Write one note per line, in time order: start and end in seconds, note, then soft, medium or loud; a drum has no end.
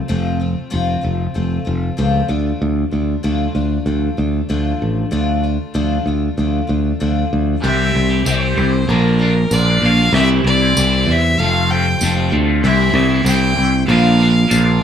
0.08 0.54 F1 loud
0.08 0.40 F2 medium
0.08 0.40 C3 medium
0.08 0.41 F3 medium
0.08 0.40 A3 medium
0.08 0.40 C4 medium
0.08 0.38 F4 medium
0.40 0.69 F3 soft
0.40 0.70 A3 soft
0.40 0.70 C4 soft
0.40 0.71 F4 soft
0.70 0.95 F1 medium
0.70 1.03 F2 medium
0.70 1.03 C3 medium
0.70 1.02 F3 medium
0.70 1.02 A3 medium
0.70 1.01 C4 medium
0.70 1.00 F4 loud
1.01 1.26 F1 medium
1.01 1.33 F3 soft
1.01 1.34 A3 medium
1.01 1.34 C4 medium
1.01 1.34 F4 medium
1.34 1.58 F1 medium
1.34 1.66 F3 medium
1.34 1.65 A3 medium
1.34 1.65 C4 medium
1.34 1.64 F4 medium
1.65 1.89 F1 medium
1.65 1.97 F3 soft
1.65 1.97 A3 soft
1.65 1.97 C4 soft
1.65 1.97 F4 medium
1.97 2.21 C#2 medium
1.97 2.29 F2 medium
1.97 2.29 C3 medium
1.97 2.28 F3 medium
1.97 2.28 A3 medium
1.97 2.28 C4 medium
1.97 2.27 F4 medium
2.28 2.51 D2 medium
2.28 2.92 D3 medium
2.28 2.92 F3 medium
2.28 2.92 A3 medium
2.28 2.92 D4 medium
2.28 2.90 F4 medium
2.62 2.84 D2 medium
2.91 3.15 D2 medium
2.91 3.23 A3 soft
2.91 3.23 D4 soft
2.91 3.23 F4 medium
3.23 3.46 D2 medium
3.23 3.55 D3 medium
3.23 3.55 F3 medium
3.23 3.55 A3 medium
3.23 3.55 D4 medium
3.23 3.54 F4 medium
3.55 3.77 D2 medium
3.55 3.86 A3 soft
3.55 3.86 D4 medium
3.55 3.86 F4 medium
3.86 4.08 D2 medium
3.86 4.18 F3 medium
3.86 4.18 A3 medium
3.86 4.17 D4 medium
3.86 4.16 F4 medium
4.17 4.40 D2 medium
4.17 4.48 A3 soft
4.17 4.49 D4 medium
4.17 4.49 F4 medium
4.49 4.72 D2 medium
4.49 5.10 D3 medium
4.49 5.10 F3 medium
4.49 5.11 A3 medium
4.49 5.11 D4 medium
4.49 5.11 F4 medium
4.82 5.04 A1 medium
5.11 5.56 D2 medium
5.11 5.43 D3 medium
5.11 5.43 F3 medium
5.11 5.43 A3 medium
5.11 5.43 D4 loud
5.11 5.42 F4 medium
5.43 5.73 A3 soft
5.43 5.74 D4 medium
5.43 5.74 F4 medium
5.74 5.97 D2 medium
5.74 6.06 D3 medium
5.74 6.06 F3 medium
5.74 6.06 A3 medium
5.74 6.06 D4 medium
5.74 6.06 F4 loud
6.06 6.28 D2 medium
6.06 6.37 A3 soft
6.06 6.38 D4 medium
6.06 6.38 F4 medium
6.37 6.60 D2 medium
6.37 6.69 F3 medium
6.37 6.68 A3 medium
6.37 6.67 D4 medium
6.37 6.66 F4 medium
6.67 6.91 D2 medium
6.67 6.99 A3 soft
6.67 7.00 D4 medium
6.67 7.00 F4 medium
7.00 7.23 D2 medium
7.00 7.63 D3 medium
7.00 7.63 F3 medium
7.00 7.63 A3 medium
7.00 7.63 D4 medium
7.00 7.64 F4 medium
7.33 7.55 D2 medium
7.61 7.91 C2 loud
7.61 8.23 C3 medium
7.61 8.26 C3 medium
7.61 8.24 E3 loud
7.61 8.12 G3 loud
7.61 8.25 G3 medium
7.61 8.10 C4 loud
7.61 8.25 C4 medium
7.61 8.26 E4 medium
7.61 8.08 G4 loud
7.61 8.26 G4 medium
7.61 8.86 C5 medium
7.61 8.87 E5 medium
7.61 8.22 E5 medium
7.61 8.87 G5 medium
7.61 8.87 E6 medium
7.95 8.23 C2 medium
8.10 8.25 G3 medium
8.10 8.26 C4 medium
8.10 8.26 G4 medium
8.24 8.54 C2 medium
8.24 8.86 C3 medium
8.24 8.54 E3 medium
8.24 8.57 G3 medium
8.24 8.56 G3 loud
8.24 8.57 C4 medium
8.24 8.56 C4 loud
8.24 8.58 E4 medium
8.24 8.57 G4 loud
8.24 8.57 G4 medium
8.24 8.92 C5 medium
8.24 tambourine medium
8.55 8.85 C2 medium
8.55 8.73 E3 medium
8.55 8.72 G3 medium
8.55 8.72 C4 medium
8.55 8.89 E4 soft
8.55 8.89 G4 medium
8.55 8.72 G4 medium
8.60 8.89 C4 soft
8.73 muted clean electric guitar stroke soft
8.87 9.44 A#1 medium
8.87 9.50 A#2 loud
8.87 9.20 A#2 medium
8.87 9.18 D3 medium
8.87 9.20 F3 medium
8.87 9.20 A#3 loud
8.87 9.20 A#3 medium
8.87 9.21 D4 loud
8.87 9.18 D4 medium
8.87 9.22 F4 loud
8.87 10.13 A#4 medium
8.87 9.55 A#4 medium
8.87 9.18 A#4 medium
8.87 10.13 D5 medium
8.87 10.13 F5 medium
8.87 10.12 D6 medium
9.19 9.36 D3 medium
9.19 10.13 A#3 soft
9.19 9.36 A#3 medium
9.19 10.13 D4 soft
9.19 9.36 D4 medium
9.19 9.35 F4 medium
9.19 10.13 A#4 medium
9.36 muted clean electric guitar stroke soft
9.51 9.79 A#1 medium
9.51 9.98 A#2 loud
9.51 9.82 D3 loud
9.51 9.70 A#3 medium
9.51 9.69 D4 loud
9.51 9.67 F4 loud
9.51 9.87 D5 loud
9.51 tambourine medium
9.68 9.83 A#3 medium
9.68 9.84 D4 medium
9.68 9.84 F4 medium
9.82 10.10 A#1 medium
9.82 10.12 D3 medium
9.82 10.01 A#3 medium
9.82 10.00 D4 medium
9.82 9.98 F4 medium
9.82 10.14 F5 loud
9.99 10.14 A#3 medium
9.99 10.13 D4 medium
9.99 10.12 F4 medium
10.12 10.41 C2 loud
10.12 10.76 C3 medium
10.12 10.76 C3 loud
10.12 10.77 E3 loud
10.12 10.76 G3 medium
10.12 10.63 G3 loud
10.12 10.76 C4 medium
10.12 10.62 C4 loud
10.12 10.76 E4 medium
10.12 11.37 G4 medium
10.12 10.76 G4 medium
10.12 13.86 C5 medium
10.12 11.38 E5 medium
10.12 10.28 E5 loud
10.12 11.38 C6 medium
10.17 10.61 E4 loud
10.44 10.72 C2 medium
10.44 11.12 D5 loud
10.62 10.78 G3 medium
10.62 10.78 C4 medium
10.62 10.79 E4 medium
10.77 11.04 C2 loud
10.77 11.37 C3 medium
10.77 11.07 E3 medium
10.77 11.39 G3 medium
10.77 11.09 G3 loud
10.77 11.38 C4 medium
10.77 11.10 C4 loud
10.77 11.39 E4 medium
10.77 11.11 E4 loud
10.77 11.39 G4 medium
10.77 tambourine loud
11.06 11.35 E2 medium
11.06 11.25 E3 medium
11.06 11.25 G3 medium
11.11 11.24 C4 medium
11.11 11.24 E4 medium
11.11 11.42 E5 loud
11.25 muted clean electric guitar stroke soft
11.38 11.94 F1 medium
11.38 11.70 F2 medium
11.38 12.00 F2 medium
11.38 11.70 C3 medium
11.38 12.01 C3 loud
11.38 11.70 F3 medium
11.38 11.70 C4 medium
11.38 11.69 F4 medium
11.38 11.69 A4 medium
11.38 12.64 A4 medium
11.38 11.72 F5 loud
11.38 12.64 F5 medium
11.38 13.87 C6 medium
11.42 11.71 A3 medium
11.42 11.72 C4 medium
11.42 11.73 F4 loud
11.70 11.87 F3 medium
11.70 12.64 F3 soft
11.70 11.87 A3 medium
11.70 12.64 C4 soft
11.70 11.86 C4 medium
11.70 12.64 F4 medium
11.70 11.86 F4 medium
11.70 12.64 A4 medium
11.70 12.33 G5 loud
11.87 muted clean electric guitar stroke soft
12.01 12.29 F1 medium
12.01 12.48 F2 loud
12.01 12.48 C3 loud
12.01 12.17 F3 loud
12.01 12.16 A3 loud
12.01 12.15 C4 loud
12.01 12.14 F4 loud
12.01 tambourine loud
12.15 12.29 F3 medium
12.15 12.31 A3 medium
12.15 12.31 C4 medium
12.15 12.32 F4 medium
12.30 12.60 D2 medium
12.30 12.47 F3 medium
12.30 12.47 A3 medium
12.30 12.46 C4 medium
12.30 12.44 F4 medium
12.46 12.62 F3 soft
12.46 12.62 A3 medium
12.46 12.61 C4 medium
12.46 12.61 F4 medium
12.62 12.92 C2 loud
12.62 13.24 C3 loud
12.62 13.26 C3 medium
12.62 13.24 E3 loud
12.62 13.12 G3 loud
12.62 13.25 G3 loud
12.62 13.10 C4 loud
12.62 13.26 C4 medium
12.62 13.26 E4 medium
12.62 13.08 E4 loud
12.62 13.89 G4 medium
12.62 13.26 G4 medium
12.62 13.23 E5 loud
12.62 13.89 E5 medium
12.94 13.22 C2 loud
13.09 13.25 G3 medium
13.09 13.26 C4 medium
13.09 13.27 E4 medium
13.24 13.53 C2 loud
13.24 13.86 C3 loud
13.24 13.54 E3 loud
13.24 13.88 G3 medium
13.24 13.56 G3 loud
13.24 13.57 C4 loud
13.24 13.88 C4 medium
13.24 13.89 E4 medium
13.24 13.57 E4 loud
13.24 13.89 G4 medium
13.24 13.85 G5 loud
13.24 tambourine medium
13.56 13.85 C2 medium
13.56 13.71 E3 medium
13.56 13.71 G3 medium
13.56 13.70 C4 medium
13.56 13.70 E4 medium
13.71 muted clean electric guitar stroke medium
13.86 14.44 A#1 loud
13.86 14.46 A#2 medium
13.86 14.20 A#2 medium
13.86 14.16 D3 loud
13.86 14.20 F3 medium
13.86 14.18 A#3 loud
13.86 14.20 A#3 medium
13.86 14.19 D4 medium
13.86 14.19 D4 loud
13.86 14.83 F4 medium
13.86 14.20 F4 loud
13.86 14.19 A#4 medium
13.86 14.83 A#4 medium
13.86 14.83 D5 medium
13.86 14.83 F5 loud
13.86 14.83 D6 medium
14.18 14.33 D3 medium
14.18 14.32 A#3 medium
14.18 14.83 A#3 soft
14.18 14.32 D4 medium
14.18 14.83 D4 medium
14.18 14.32 F4 medium
14.18 14.83 A#4 medium
14.33 muted clean electric guitar stroke soft
14.47 14.79 A#1 medium
14.47 14.83 A#2 loud
14.47 14.79 D3 loud
14.47 14.66 A#3 loud
14.47 14.65 D4 loud
14.47 14.63 F4 loud
14.47 tambourine medium
14.64 14.80 A#3 medium
14.64 14.81 D4 medium
14.64 14.82 F4 medium
14.80 14.83 D3 medium